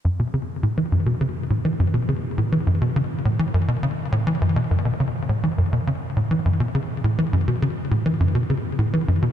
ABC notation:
X:1
M:4/4
L:1/16
Q:1/4=103
K:F#m
V:1 name="Analog synth bass" clef=bass
F,, B,, C, z A,, E, F,, B,, C, z A,, E, F,, B,, C, z | A,, E, F,, B,, C, z A,, E, F,, B,, C, z A,, E, F,, B,, | F,, B,, C, z A,, E, F,, B,, C, z A,, E, F,, B,, C, z | A,, E, F,, B,, C, z A,, E, F,, B,, C, z A,, E, F,, B,, |]